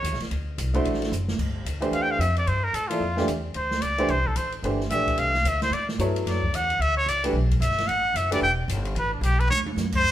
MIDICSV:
0, 0, Header, 1, 5, 480
1, 0, Start_track
1, 0, Tempo, 270636
1, 539, Time_signature, 4, 2, 24, 8
1, 17938, End_track
2, 0, Start_track
2, 0, Title_t, "Muted trumpet"
2, 0, Program_c, 0, 59
2, 0, Note_on_c, 0, 73, 87
2, 378, Note_off_c, 0, 73, 0
2, 3440, Note_on_c, 0, 77, 90
2, 3593, Note_on_c, 0, 79, 96
2, 3620, Note_off_c, 0, 77, 0
2, 3743, Note_on_c, 0, 77, 88
2, 3769, Note_off_c, 0, 79, 0
2, 3908, Note_on_c, 0, 76, 79
2, 3934, Note_off_c, 0, 77, 0
2, 4194, Note_off_c, 0, 76, 0
2, 4225, Note_on_c, 0, 74, 91
2, 4398, Note_on_c, 0, 72, 82
2, 4425, Note_off_c, 0, 74, 0
2, 4679, Note_on_c, 0, 70, 94
2, 4706, Note_off_c, 0, 72, 0
2, 4875, Note_on_c, 0, 69, 85
2, 4901, Note_off_c, 0, 70, 0
2, 5104, Note_on_c, 0, 65, 85
2, 5130, Note_off_c, 0, 69, 0
2, 5799, Note_off_c, 0, 65, 0
2, 6311, Note_on_c, 0, 72, 84
2, 6774, Note_on_c, 0, 74, 95
2, 6800, Note_off_c, 0, 72, 0
2, 7278, Note_on_c, 0, 72, 93
2, 7305, Note_off_c, 0, 74, 0
2, 7576, Note_on_c, 0, 69, 69
2, 7603, Note_off_c, 0, 72, 0
2, 7747, Note_on_c, 0, 72, 77
2, 7774, Note_off_c, 0, 69, 0
2, 8033, Note_off_c, 0, 72, 0
2, 8714, Note_on_c, 0, 76, 93
2, 9209, Note_on_c, 0, 77, 98
2, 9236, Note_off_c, 0, 76, 0
2, 9721, Note_on_c, 0, 76, 84
2, 9748, Note_off_c, 0, 77, 0
2, 9973, Note_off_c, 0, 76, 0
2, 9983, Note_on_c, 0, 72, 95
2, 10170, Note_on_c, 0, 74, 82
2, 10197, Note_off_c, 0, 72, 0
2, 10444, Note_off_c, 0, 74, 0
2, 11149, Note_on_c, 0, 74, 83
2, 11625, Note_on_c, 0, 78, 95
2, 11651, Note_off_c, 0, 74, 0
2, 12084, Note_on_c, 0, 76, 97
2, 12111, Note_off_c, 0, 78, 0
2, 12352, Note_off_c, 0, 76, 0
2, 12363, Note_on_c, 0, 73, 106
2, 12573, Note_on_c, 0, 74, 97
2, 12600, Note_off_c, 0, 73, 0
2, 12845, Note_off_c, 0, 74, 0
2, 13514, Note_on_c, 0, 76, 92
2, 13967, Note_on_c, 0, 78, 105
2, 13994, Note_off_c, 0, 76, 0
2, 14483, Note_on_c, 0, 76, 88
2, 14510, Note_off_c, 0, 78, 0
2, 14752, Note_off_c, 0, 76, 0
2, 14763, Note_on_c, 0, 74, 99
2, 14933, Note_off_c, 0, 74, 0
2, 14956, Note_on_c, 0, 79, 101
2, 15124, Note_off_c, 0, 79, 0
2, 15944, Note_on_c, 0, 71, 89
2, 16191, Note_off_c, 0, 71, 0
2, 16207, Note_on_c, 0, 62, 55
2, 16383, Note_on_c, 0, 67, 94
2, 16410, Note_off_c, 0, 62, 0
2, 16666, Note_on_c, 0, 71, 90
2, 16692, Note_off_c, 0, 67, 0
2, 16844, Note_off_c, 0, 71, 0
2, 16855, Note_on_c, 0, 73, 102
2, 17029, Note_off_c, 0, 73, 0
2, 17671, Note_on_c, 0, 72, 127
2, 17938, Note_off_c, 0, 72, 0
2, 17938, End_track
3, 0, Start_track
3, 0, Title_t, "Upright piano"
3, 0, Program_c, 1, 0
3, 1308, Note_on_c, 1, 57, 82
3, 1311, Note_on_c, 1, 62, 72
3, 1322, Note_on_c, 1, 64, 69
3, 1329, Note_on_c, 1, 66, 71
3, 1338, Note_on_c, 1, 72, 83
3, 1942, Note_off_c, 1, 57, 0
3, 1944, Note_off_c, 1, 62, 0
3, 1949, Note_off_c, 1, 64, 0
3, 1953, Note_off_c, 1, 66, 0
3, 1957, Note_off_c, 1, 72, 0
3, 3200, Note_on_c, 1, 52, 67
3, 3210, Note_on_c, 1, 57, 68
3, 3217, Note_on_c, 1, 62, 69
3, 3222, Note_on_c, 1, 67, 66
3, 3227, Note_on_c, 1, 72, 77
3, 3849, Note_off_c, 1, 52, 0
3, 3854, Note_off_c, 1, 57, 0
3, 3857, Note_off_c, 1, 62, 0
3, 3860, Note_off_c, 1, 67, 0
3, 3862, Note_off_c, 1, 72, 0
3, 5141, Note_on_c, 1, 53, 62
3, 5145, Note_on_c, 1, 58, 63
3, 5155, Note_on_c, 1, 64, 60
3, 5163, Note_on_c, 1, 69, 63
3, 5171, Note_on_c, 1, 74, 70
3, 5318, Note_off_c, 1, 53, 0
3, 5321, Note_off_c, 1, 58, 0
3, 5325, Note_off_c, 1, 64, 0
3, 5329, Note_off_c, 1, 69, 0
3, 5333, Note_off_c, 1, 74, 0
3, 5614, Note_on_c, 1, 52, 78
3, 5629, Note_on_c, 1, 57, 74
3, 5637, Note_on_c, 1, 62, 71
3, 5646, Note_on_c, 1, 67, 76
3, 5646, Note_on_c, 1, 74, 91
3, 5795, Note_off_c, 1, 52, 0
3, 5802, Note_off_c, 1, 57, 0
3, 5806, Note_off_c, 1, 62, 0
3, 5811, Note_off_c, 1, 67, 0
3, 5811, Note_off_c, 1, 74, 0
3, 7064, Note_on_c, 1, 52, 83
3, 7069, Note_on_c, 1, 57, 75
3, 7082, Note_on_c, 1, 62, 75
3, 7085, Note_on_c, 1, 67, 77
3, 7093, Note_on_c, 1, 72, 85
3, 7240, Note_off_c, 1, 52, 0
3, 7242, Note_off_c, 1, 57, 0
3, 7249, Note_off_c, 1, 62, 0
3, 7250, Note_off_c, 1, 67, 0
3, 7254, Note_off_c, 1, 72, 0
3, 8221, Note_on_c, 1, 52, 71
3, 8232, Note_on_c, 1, 57, 62
3, 8237, Note_on_c, 1, 62, 62
3, 8249, Note_on_c, 1, 72, 73
3, 8250, Note_on_c, 1, 67, 59
3, 8481, Note_off_c, 1, 52, 0
3, 8487, Note_off_c, 1, 57, 0
3, 8489, Note_off_c, 1, 62, 0
3, 8495, Note_off_c, 1, 72, 0
3, 8496, Note_off_c, 1, 67, 0
3, 8700, Note_on_c, 1, 52, 57
3, 8705, Note_on_c, 1, 57, 53
3, 8715, Note_on_c, 1, 62, 50
3, 8721, Note_on_c, 1, 67, 50
3, 8732, Note_on_c, 1, 74, 66
3, 9411, Note_off_c, 1, 52, 0
3, 9414, Note_off_c, 1, 57, 0
3, 9419, Note_off_c, 1, 62, 0
3, 9422, Note_off_c, 1, 67, 0
3, 9427, Note_off_c, 1, 74, 0
3, 10634, Note_on_c, 1, 59, 63
3, 10636, Note_on_c, 1, 54, 68
3, 10638, Note_on_c, 1, 64, 62
3, 10650, Note_on_c, 1, 69, 59
3, 10657, Note_on_c, 1, 73, 78
3, 11338, Note_off_c, 1, 59, 0
3, 11339, Note_off_c, 1, 54, 0
3, 11340, Note_off_c, 1, 64, 0
3, 11346, Note_off_c, 1, 69, 0
3, 11349, Note_off_c, 1, 73, 0
3, 12835, Note_on_c, 1, 52, 72
3, 12843, Note_on_c, 1, 57, 69
3, 12846, Note_on_c, 1, 62, 64
3, 12858, Note_on_c, 1, 71, 79
3, 12863, Note_on_c, 1, 67, 68
3, 13003, Note_off_c, 1, 52, 0
3, 13007, Note_off_c, 1, 57, 0
3, 13009, Note_off_c, 1, 62, 0
3, 13015, Note_off_c, 1, 71, 0
3, 13018, Note_off_c, 1, 67, 0
3, 14734, Note_on_c, 1, 52, 77
3, 14746, Note_on_c, 1, 57, 69
3, 14747, Note_on_c, 1, 62, 67
3, 14752, Note_on_c, 1, 67, 73
3, 14770, Note_on_c, 1, 71, 91
3, 14912, Note_off_c, 1, 52, 0
3, 14918, Note_off_c, 1, 57, 0
3, 14919, Note_off_c, 1, 62, 0
3, 14921, Note_off_c, 1, 67, 0
3, 14930, Note_off_c, 1, 71, 0
3, 17938, End_track
4, 0, Start_track
4, 0, Title_t, "Upright bass"
4, 0, Program_c, 2, 32
4, 47, Note_on_c, 2, 39, 97
4, 216, Note_off_c, 2, 39, 0
4, 216, Note_on_c, 2, 35, 59
4, 362, Note_off_c, 2, 35, 0
4, 373, Note_on_c, 2, 33, 60
4, 525, Note_off_c, 2, 33, 0
4, 545, Note_on_c, 2, 38, 88
4, 1009, Note_off_c, 2, 38, 0
4, 1029, Note_on_c, 2, 36, 92
4, 1491, Note_off_c, 2, 36, 0
4, 1498, Note_on_c, 2, 33, 92
4, 1965, Note_off_c, 2, 33, 0
4, 1979, Note_on_c, 2, 30, 99
4, 2446, Note_off_c, 2, 30, 0
4, 2461, Note_on_c, 2, 31, 80
4, 2918, Note_off_c, 2, 31, 0
4, 2929, Note_on_c, 2, 38, 89
4, 3381, Note_off_c, 2, 38, 0
4, 3392, Note_on_c, 2, 40, 82
4, 3865, Note_off_c, 2, 40, 0
4, 3875, Note_on_c, 2, 41, 90
4, 4354, Note_off_c, 2, 41, 0
4, 4385, Note_on_c, 2, 43, 87
4, 4838, Note_off_c, 2, 43, 0
4, 4848, Note_on_c, 2, 45, 81
4, 5316, Note_off_c, 2, 45, 0
4, 5326, Note_on_c, 2, 41, 88
4, 5800, Note_off_c, 2, 41, 0
4, 5817, Note_on_c, 2, 40, 88
4, 6285, Note_off_c, 2, 40, 0
4, 6299, Note_on_c, 2, 38, 87
4, 6766, Note_off_c, 2, 38, 0
4, 6780, Note_on_c, 2, 37, 90
4, 7247, Note_off_c, 2, 37, 0
4, 7256, Note_on_c, 2, 36, 94
4, 7718, Note_off_c, 2, 36, 0
4, 7729, Note_on_c, 2, 33, 85
4, 8190, Note_off_c, 2, 33, 0
4, 8200, Note_on_c, 2, 31, 88
4, 8676, Note_off_c, 2, 31, 0
4, 8686, Note_on_c, 2, 34, 80
4, 9159, Note_off_c, 2, 34, 0
4, 9169, Note_on_c, 2, 36, 91
4, 9640, Note_off_c, 2, 36, 0
4, 9649, Note_on_c, 2, 38, 91
4, 10111, Note_off_c, 2, 38, 0
4, 10122, Note_on_c, 2, 45, 80
4, 10596, Note_off_c, 2, 45, 0
4, 10613, Note_on_c, 2, 43, 91
4, 11082, Note_off_c, 2, 43, 0
4, 11093, Note_on_c, 2, 42, 85
4, 11562, Note_off_c, 2, 42, 0
4, 11585, Note_on_c, 2, 40, 93
4, 12034, Note_off_c, 2, 40, 0
4, 12045, Note_on_c, 2, 38, 91
4, 12517, Note_off_c, 2, 38, 0
4, 12526, Note_on_c, 2, 37, 94
4, 12983, Note_off_c, 2, 37, 0
4, 12994, Note_on_c, 2, 35, 95
4, 13468, Note_off_c, 2, 35, 0
4, 13478, Note_on_c, 2, 31, 91
4, 13953, Note_off_c, 2, 31, 0
4, 13968, Note_on_c, 2, 33, 86
4, 14427, Note_off_c, 2, 33, 0
4, 14438, Note_on_c, 2, 30, 92
4, 14908, Note_off_c, 2, 30, 0
4, 14919, Note_on_c, 2, 28, 87
4, 15383, Note_off_c, 2, 28, 0
4, 15394, Note_on_c, 2, 31, 101
4, 15864, Note_off_c, 2, 31, 0
4, 15874, Note_on_c, 2, 33, 99
4, 16327, Note_off_c, 2, 33, 0
4, 16337, Note_on_c, 2, 35, 98
4, 16806, Note_off_c, 2, 35, 0
4, 16816, Note_on_c, 2, 40, 98
4, 17302, Note_off_c, 2, 40, 0
4, 17316, Note_on_c, 2, 42, 98
4, 17787, Note_off_c, 2, 42, 0
4, 17798, Note_on_c, 2, 43, 82
4, 17938, Note_off_c, 2, 43, 0
4, 17938, End_track
5, 0, Start_track
5, 0, Title_t, "Drums"
5, 78, Note_on_c, 9, 44, 69
5, 78, Note_on_c, 9, 51, 72
5, 241, Note_on_c, 9, 38, 30
5, 255, Note_off_c, 9, 44, 0
5, 255, Note_off_c, 9, 51, 0
5, 360, Note_on_c, 9, 51, 50
5, 398, Note_off_c, 9, 38, 0
5, 398, Note_on_c, 9, 38, 43
5, 537, Note_off_c, 9, 51, 0
5, 550, Note_on_c, 9, 51, 60
5, 576, Note_off_c, 9, 38, 0
5, 727, Note_off_c, 9, 51, 0
5, 1032, Note_on_c, 9, 44, 58
5, 1032, Note_on_c, 9, 51, 74
5, 1209, Note_off_c, 9, 44, 0
5, 1209, Note_off_c, 9, 51, 0
5, 1318, Note_on_c, 9, 51, 50
5, 1495, Note_off_c, 9, 51, 0
5, 1511, Note_on_c, 9, 51, 60
5, 1665, Note_on_c, 9, 38, 31
5, 1689, Note_off_c, 9, 51, 0
5, 1806, Note_on_c, 9, 51, 47
5, 1833, Note_off_c, 9, 38, 0
5, 1833, Note_on_c, 9, 38, 46
5, 1983, Note_off_c, 9, 51, 0
5, 1993, Note_on_c, 9, 44, 62
5, 2010, Note_off_c, 9, 38, 0
5, 2170, Note_off_c, 9, 44, 0
5, 2272, Note_on_c, 9, 38, 66
5, 2450, Note_off_c, 9, 38, 0
5, 2459, Note_on_c, 9, 36, 70
5, 2465, Note_on_c, 9, 49, 70
5, 2636, Note_off_c, 9, 36, 0
5, 2642, Note_off_c, 9, 49, 0
5, 2947, Note_on_c, 9, 44, 51
5, 2947, Note_on_c, 9, 51, 68
5, 3125, Note_off_c, 9, 44, 0
5, 3125, Note_off_c, 9, 51, 0
5, 3227, Note_on_c, 9, 51, 51
5, 3404, Note_off_c, 9, 51, 0
5, 3423, Note_on_c, 9, 51, 60
5, 3600, Note_off_c, 9, 51, 0
5, 3916, Note_on_c, 9, 44, 64
5, 3916, Note_on_c, 9, 51, 75
5, 4093, Note_off_c, 9, 44, 0
5, 4093, Note_off_c, 9, 51, 0
5, 4194, Note_on_c, 9, 51, 46
5, 4371, Note_off_c, 9, 51, 0
5, 4384, Note_on_c, 9, 51, 63
5, 4562, Note_off_c, 9, 51, 0
5, 4859, Note_on_c, 9, 44, 68
5, 4859, Note_on_c, 9, 51, 70
5, 5037, Note_off_c, 9, 44, 0
5, 5037, Note_off_c, 9, 51, 0
5, 5151, Note_on_c, 9, 51, 75
5, 5329, Note_off_c, 9, 51, 0
5, 5623, Note_on_c, 9, 38, 56
5, 5800, Note_off_c, 9, 38, 0
5, 5814, Note_on_c, 9, 44, 69
5, 5814, Note_on_c, 9, 51, 66
5, 5991, Note_off_c, 9, 44, 0
5, 5991, Note_off_c, 9, 51, 0
5, 6281, Note_on_c, 9, 51, 63
5, 6458, Note_off_c, 9, 51, 0
5, 6581, Note_on_c, 9, 38, 58
5, 6758, Note_off_c, 9, 38, 0
5, 6768, Note_on_c, 9, 44, 58
5, 6768, Note_on_c, 9, 51, 68
5, 6946, Note_off_c, 9, 44, 0
5, 6946, Note_off_c, 9, 51, 0
5, 7063, Note_on_c, 9, 51, 50
5, 7241, Note_off_c, 9, 51, 0
5, 7244, Note_on_c, 9, 51, 60
5, 7421, Note_off_c, 9, 51, 0
5, 7544, Note_on_c, 9, 36, 58
5, 7722, Note_off_c, 9, 36, 0
5, 7727, Note_on_c, 9, 44, 65
5, 7727, Note_on_c, 9, 51, 74
5, 7904, Note_off_c, 9, 44, 0
5, 7904, Note_off_c, 9, 51, 0
5, 8021, Note_on_c, 9, 51, 45
5, 8198, Note_off_c, 9, 51, 0
5, 8225, Note_on_c, 9, 51, 61
5, 8403, Note_off_c, 9, 51, 0
5, 8521, Note_on_c, 9, 38, 35
5, 8696, Note_on_c, 9, 44, 59
5, 8696, Note_on_c, 9, 51, 63
5, 8699, Note_off_c, 9, 38, 0
5, 8874, Note_off_c, 9, 44, 0
5, 8874, Note_off_c, 9, 51, 0
5, 8995, Note_on_c, 9, 36, 57
5, 9002, Note_on_c, 9, 51, 49
5, 9173, Note_off_c, 9, 36, 0
5, 9179, Note_off_c, 9, 51, 0
5, 9179, Note_on_c, 9, 51, 63
5, 9356, Note_off_c, 9, 51, 0
5, 9476, Note_on_c, 9, 38, 42
5, 9654, Note_off_c, 9, 38, 0
5, 9668, Note_on_c, 9, 44, 64
5, 9668, Note_on_c, 9, 51, 74
5, 9845, Note_off_c, 9, 44, 0
5, 9845, Note_off_c, 9, 51, 0
5, 9961, Note_on_c, 9, 38, 60
5, 9964, Note_on_c, 9, 51, 47
5, 10138, Note_off_c, 9, 38, 0
5, 10142, Note_off_c, 9, 51, 0
5, 10161, Note_on_c, 9, 51, 62
5, 10338, Note_off_c, 9, 51, 0
5, 10440, Note_on_c, 9, 38, 61
5, 10617, Note_off_c, 9, 38, 0
5, 10630, Note_on_c, 9, 44, 56
5, 10630, Note_on_c, 9, 51, 68
5, 10807, Note_off_c, 9, 44, 0
5, 10807, Note_off_c, 9, 51, 0
5, 10926, Note_on_c, 9, 51, 52
5, 11104, Note_off_c, 9, 51, 0
5, 11113, Note_on_c, 9, 38, 41
5, 11117, Note_on_c, 9, 51, 68
5, 11290, Note_off_c, 9, 38, 0
5, 11294, Note_off_c, 9, 51, 0
5, 11397, Note_on_c, 9, 36, 62
5, 11574, Note_off_c, 9, 36, 0
5, 11594, Note_on_c, 9, 44, 55
5, 11594, Note_on_c, 9, 51, 82
5, 11771, Note_off_c, 9, 44, 0
5, 11771, Note_off_c, 9, 51, 0
5, 11882, Note_on_c, 9, 51, 47
5, 12059, Note_off_c, 9, 51, 0
5, 12091, Note_on_c, 9, 51, 65
5, 12269, Note_off_c, 9, 51, 0
5, 12563, Note_on_c, 9, 44, 59
5, 12563, Note_on_c, 9, 51, 72
5, 12740, Note_off_c, 9, 44, 0
5, 12740, Note_off_c, 9, 51, 0
5, 12837, Note_on_c, 9, 51, 76
5, 13014, Note_off_c, 9, 51, 0
5, 13310, Note_on_c, 9, 36, 56
5, 13326, Note_on_c, 9, 51, 53
5, 13488, Note_off_c, 9, 36, 0
5, 13503, Note_off_c, 9, 51, 0
5, 13510, Note_on_c, 9, 44, 65
5, 13510, Note_on_c, 9, 51, 75
5, 13672, Note_on_c, 9, 38, 31
5, 13687, Note_off_c, 9, 44, 0
5, 13687, Note_off_c, 9, 51, 0
5, 13805, Note_on_c, 9, 51, 47
5, 13820, Note_off_c, 9, 38, 0
5, 13820, Note_on_c, 9, 38, 47
5, 13982, Note_off_c, 9, 51, 0
5, 13988, Note_on_c, 9, 51, 65
5, 13997, Note_off_c, 9, 38, 0
5, 14165, Note_off_c, 9, 51, 0
5, 14465, Note_on_c, 9, 44, 70
5, 14465, Note_on_c, 9, 51, 74
5, 14642, Note_off_c, 9, 44, 0
5, 14642, Note_off_c, 9, 51, 0
5, 14754, Note_on_c, 9, 51, 83
5, 14932, Note_off_c, 9, 51, 0
5, 15419, Note_on_c, 9, 44, 68
5, 15419, Note_on_c, 9, 51, 84
5, 15596, Note_off_c, 9, 44, 0
5, 15596, Note_off_c, 9, 51, 0
5, 15700, Note_on_c, 9, 51, 53
5, 15877, Note_off_c, 9, 51, 0
5, 15890, Note_on_c, 9, 51, 65
5, 16068, Note_off_c, 9, 51, 0
5, 16375, Note_on_c, 9, 44, 53
5, 16375, Note_on_c, 9, 51, 71
5, 16552, Note_off_c, 9, 44, 0
5, 16552, Note_off_c, 9, 51, 0
5, 16678, Note_on_c, 9, 51, 51
5, 16854, Note_on_c, 9, 48, 52
5, 16855, Note_off_c, 9, 51, 0
5, 17032, Note_off_c, 9, 48, 0
5, 17137, Note_on_c, 9, 48, 72
5, 17315, Note_off_c, 9, 48, 0
5, 17331, Note_on_c, 9, 38, 58
5, 17335, Note_on_c, 9, 44, 59
5, 17508, Note_off_c, 9, 38, 0
5, 17512, Note_off_c, 9, 44, 0
5, 17601, Note_on_c, 9, 49, 84
5, 17619, Note_on_c, 9, 36, 77
5, 17778, Note_off_c, 9, 49, 0
5, 17796, Note_off_c, 9, 36, 0
5, 17938, End_track
0, 0, End_of_file